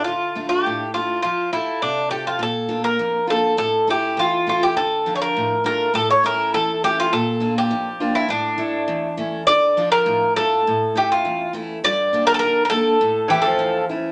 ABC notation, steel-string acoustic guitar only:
X:1
M:2/4
L:1/8
Q:1/4=102
K:Dm
V:1 name="Steel-string acoustic guitar"
D, [A,DF] A,, [A,DF] | F, [FGA] C, [FGA] | B,, [B,DF] F,, [B,DF] | A,, [A,^CE] E,, [A,CE] |
D, [F,DF] A,, [A,DF] | A,, [A,^CE] E,, [A,CE] | B,, [B,DF] F,, [B,DF] | A,, [A,E^c] E,, [A,^CE] |
D, [F,DF] A,, [A,DF] | A,, [A,^Ce] E,, [A,CE] | G,, [B,DG] D, [B,DG] | A,, [A,^CE] E,, [A,CE] |]